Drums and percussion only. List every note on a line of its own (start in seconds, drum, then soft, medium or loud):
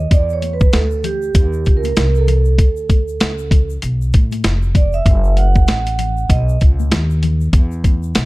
0.11 kick medium
0.11 closed hi-hat medium
0.11 shaker medium
0.30 shaker soft
0.42 closed hi-hat medium
0.42 high conga soft
0.42 shaker soft
0.60 kick loud
0.60 shaker soft
0.72 snare loud
0.72 closed hi-hat medium
0.72 shaker medium
0.91 shaker soft
1.04 closed hi-hat medium
1.04 low conga medium
1.04 shaker soft
1.22 shaker soft
1.35 kick loud
1.35 closed hi-hat medium
1.35 shaker medium
1.53 shaker soft
1.65 kick medium
1.65 closed hi-hat medium
1.65 shaker soft
1.84 closed hi-hat medium
1.84 high conga medium
1.84 shaker medium
1.96 snare loud
1.96 closed hi-hat medium
1.96 shaker medium
2.15 shaker soft
2.28 closed hi-hat medium
2.28 low conga medium
2.28 shaker soft
2.45 shaker soft
2.58 kick loud
2.58 closed hi-hat medium
2.58 shaker medium
2.77 shaker soft
2.90 kick medium
2.90 closed hi-hat medium
2.90 high conga soft
2.90 shaker soft
3.08 shaker soft
3.20 snare loud
3.20 closed hi-hat medium
3.20 shaker medium
3.38 shaker soft
3.51 kick medium
3.51 closed hi-hat medium
3.51 low conga medium
3.51 shaker soft
3.70 shaker soft
3.82 closed hi-hat medium
3.82 shaker medium
4.02 shaker medium
4.13 kick medium
4.13 closed hi-hat medium
4.13 shaker soft
4.32 closed hi-hat soft
4.32 high conga medium
4.32 shaker medium
4.44 snare loud
4.44 closed hi-hat medium
4.44 shaker medium
4.62 shaker soft
4.75 kick medium
4.75 closed hi-hat medium
4.75 low conga medium
4.75 shaker soft
4.93 shaker soft
5.06 kick loud
5.06 closed hi-hat medium
5.06 shaker medium
5.24 shaker soft
5.37 closed hi-hat medium
5.37 high conga soft
5.37 shaker soft
5.55 kick loud
5.55 shaker soft
5.67 snare loud
5.67 closed hi-hat medium
5.67 shaker medium
5.86 closed hi-hat medium
5.86 shaker soft
5.99 closed hi-hat medium
5.99 low conga medium
5.99 shaker soft
6.17 shaker soft
6.30 kick loud
6.30 closed hi-hat medium
6.30 shaker medium
6.49 shaker medium
6.60 kick medium
6.60 closed hi-hat medium
6.60 shaker soft
6.80 high conga medium
6.80 shaker medium
6.92 snare loud
6.92 closed hi-hat medium
6.92 shaker medium
7.10 shaker soft
7.23 closed hi-hat medium
7.23 low conga medium
7.23 shaker soft
7.41 shaker soft
7.53 kick loud
7.53 closed hi-hat medium
7.53 shaker medium
7.72 shaker soft
7.84 kick medium
7.84 closed hi-hat medium
7.84 high conga medium
7.84 shaker medium
8.03 shaker medium
8.15 snare loud
8.15 closed hi-hat medium
8.15 shaker medium